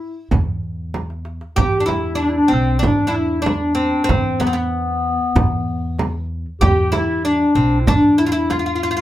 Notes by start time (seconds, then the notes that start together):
Already playing: E4
0.00 darbuka ka
0.31 E2, darbuka dum, frame drum
0.48 darbuka ka
0.63 darbuka ka
0.94 darbuka tek, frame drum
1.10 darbuka ka
1.25 darbuka tek
1.41 darbuka ka
1.56 E2 G4, darbuka dum, frame drum
1.74 darbuka ka
1.80 D4
1.86 E4, darbuka tek, frame drum
2.15 D4
2.23 D4
2.29 E4
2.37 D4
2.48 C4
2.52 B1 C4
2.79 D4, frame drum
2.84 E2 D4, darbuka dum
3.07 D4 E4
3.15 E4, darbuka ka
3.40 D4 E4
3.46 D4, darbuka tek, frame drum
3.75 C4
4.04 C4
4.09 E2 C4, frame drum, darbuka dum
4.25 darbuka ka
4.40 B3, darbuka tek, frame drum
4.47 C4
4.53 B3
5.05 darbuka ka
5.36 E2, darbuka dum, frame drum
5.99 darbuka tek, frame drum
6.61 E2 G4, darbuka dum, frame drum
6.77 darbuka ka
6.92 E4, darbuka tek, frame drum
7.25 D4
7.55 B1 C4
7.81 E4
7.86 E2 D4, darbuka dum, frame drum
8.18 E4, darbuka ka
8.26 F4
8.32 E4
8.50 F4, darbuka tek, frame drum
8.59 F4
8.66 F4
8.76 F4
8.83 F4
8.91 F4
8.97 F4